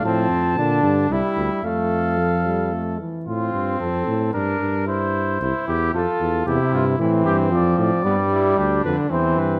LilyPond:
<<
  \new Staff \with { instrumentName = "Cornet" } { \time 3/4 \key f \major \tempo 4 = 113 a''2 e''4 | f''2~ f''8 r8 | f'4 a'4 bes'4 | c''4. g'8 a'4 |
g'8 f'8 e'8 g'8 d''8 d''8~ | d''4 g'8 b'8 c''8 b'8 | }
  \new Staff \with { instrumentName = "Flugelhorn" } { \time 3/4 \key f \major c'4 d'4 e'4 | a'2~ a'8 r8 | c'2 d'4 | e'4 e'4 f'4 |
e'4 c'2 | b8 e'8 d'4 c'4 | }
  \new Staff \with { instrumentName = "Trombone" } { \clef bass \time 3/4 \key f \major f4 d4 g4 | a4 f8 g8 a8 e8 | r2. | r2. |
c4 e4 f4 | g4. d8 e4 | }
  \new Staff \with { instrumentName = "Bass trombone" } { \clef bass \time 3/4 \key f \major a,8 f,8 bes,8 g,8 c,8 d,8 | f,2~ f,8 r8 | a,8 g,8 f,8 a,8 g,8 g,8~ | g,4 c,8 e,8 f,8 e,8 |
e,8 g,8 a,8 g,8 f,8 a,8 | g,4 d,8 f,8 e,8 g,8 | }
>>